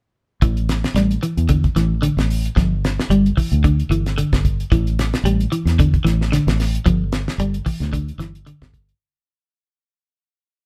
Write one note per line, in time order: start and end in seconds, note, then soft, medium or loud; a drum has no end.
0.42 0.83 A1 medium
0.42 0.59 E3 medium
0.42 kick medium
0.42 closed hi-hat medium
0.57 closed hi-hat soft
0.69 snare medium
0.69 closed hi-hat soft
0.84 snare medium
0.84 closed hi-hat soft
0.94 1.16 A1 medium
0.94 1.13 G3 medium
0.94 snare soft
0.94 closed hi-hat medium
1.11 closed hi-hat soft
1.23 1.40 E3 medium
1.23 closed hi-hat soft
1.37 1.67 E2 medium
1.37 closed hi-hat soft
1.49 1.66 D3 medium
1.49 kick medium
1.49 closed hi-hat medium
1.64 kick medium
1.64 closed hi-hat soft
1.76 2.08 A1 medium
1.76 1.93 E3 medium
1.76 snare soft
1.76 closed hi-hat soft
2.02 2.20 D3 medium
2.02 closed hi-hat medium
2.17 2.47 A1 medium
2.17 snare medium
2.17 closed hi-hat soft
2.30 open hi-hat medium
2.45 closed hi-hat soft
2.56 2.98 G1 loud
2.56 2.74 F3 medium
2.56 kick medium
2.56 snare soft
2.56 closed hi-hat medium
2.85 snare medium
2.85 closed hi-hat soft
3.00 snare medium
3.10 3.31 G1 medium
3.10 3.28 G3 medium
3.10 closed hi-hat medium
3.26 closed hi-hat soft
3.37 3.54 E3 medium
3.37 kick medium
3.37 open hi-hat medium
3.52 3.82 D2 medium
3.52 closed hi-hat soft
3.64 3.81 D3 medium
3.64 kick medium
3.64 closed hi-hat medium
3.79 closed hi-hat soft
3.90 4.22 G1 medium
3.90 4.08 E3 medium
3.90 closed hi-hat soft
4.06 snare soft
4.06 closed hi-hat soft
4.18 4.35 D3 medium
4.18 closed hi-hat medium
4.32 4.62 G1 medium
4.32 kick medium
4.32 snare medium
4.32 closed hi-hat soft
4.45 kick medium
4.45 closed hi-hat soft
4.60 closed hi-hat soft
4.72 5.13 A1 medium
4.72 4.89 E3 medium
4.72 kick medium
4.72 closed hi-hat medium
4.87 closed hi-hat soft
4.99 snare medium
4.99 closed hi-hat soft
5.13 snare medium
5.13 closed hi-hat soft
5.24 5.45 A1 medium
5.24 5.42 G3 medium
5.24 closed hi-hat medium
5.40 closed hi-hat soft
5.52 5.69 E3 medium
5.52 closed hi-hat soft
5.65 5.96 E2 medium
5.65 snare soft
5.65 closed hi-hat soft
5.79 5.96 D3 medium
5.79 kick medium
5.79 closed hi-hat medium
5.94 kick medium
5.94 closed hi-hat soft
6.04 6.37 A1 medium
6.04 6.22 E3 medium
6.04 snare soft
6.04 closed hi-hat soft
6.21 snare soft
6.32 6.49 D3 medium
6.32 snare soft
6.32 closed hi-hat medium
6.47 6.77 A1 medium
6.47 snare medium
6.47 closed hi-hat soft
6.60 snare soft
6.60 open hi-hat medium
6.75 closed hi-hat soft
6.86 7.27 G1 loud
6.86 7.03 F3 medium
6.86 kick medium
6.86 closed hi-hat medium
7.12 snare medium
7.12 closed hi-hat medium
7.28 snare medium
7.38 7.59 G1 medium
7.38 7.57 G3 medium
7.38 closed hi-hat medium
7.54 closed hi-hat soft
7.66 7.83 E3 medium
7.66 kick medium
7.66 open hi-hat medium
7.80 8.10 D2 medium
7.80 snare soft
7.80 closed hi-hat soft
7.93 8.10 D3 medium
7.93 kick medium
7.93 closed hi-hat medium
8.08 closed hi-hat soft
8.18 8.51 G1 medium
8.18 8.37 E3 medium
8.18 snare soft
8.18 closed hi-hat soft
8.35 closed hi-hat soft
8.46 8.64 D3 medium
8.46 closed hi-hat medium
8.62 8.92 G1 medium
8.62 kick medium
8.62 snare medium
8.62 closed hi-hat soft
8.74 kick medium
8.74 closed hi-hat soft
8.89 closed hi-hat soft